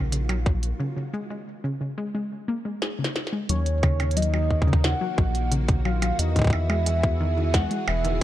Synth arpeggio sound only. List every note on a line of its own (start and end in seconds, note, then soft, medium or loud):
0.12 0.23 C#3 medium
0.29 0.40 F#3 loud
0.46 0.57 F#3 medium
0.80 0.86 C#3 loud
0.97 1.08 C#3 medium
1.13 1.24 G#3 loud
1.30 1.41 G#3 medium
1.64 1.71 C#3 loud
1.81 1.92 C#3 medium
1.98 2.09 G#3 loud
2.15 2.26 G#3 medium
2.48 2.64 A#3 medium
2.65 2.72 G#3 medium
2.82 2.93 G#4 medium
2.99 3.05 C#3 medium
3.33 3.44 G#3 medium
3.49 3.60 F#3 medium
3.83 3.90 C#3 medium
4.00 4.11 C#3 medium
4.17 4.28 F#3 loud
4.34 4.45 F#3 medium
4.67 4.74 C#3 loud
4.84 4.95 C#3 medium
5.01 5.12 F#3 loud
5.18 5.29 F#3 medium
5.52 5.58 C#3 loud
5.68 5.79 C#3 medium
5.85 5.96 F#3 loud
6.02 6.13 F#3 medium
6.36 6.42 D#3 loud
6.53 6.64 D#3 medium
6.70 6.81 G#3 loud
6.87 6.97 G#3 medium
7.20 7.27 D#3 loud
7.37 7.48 D#3 medium
7.54 7.65 G#3 loud
7.71 7.82 G#3 medium
8.05 8.11 D#3 loud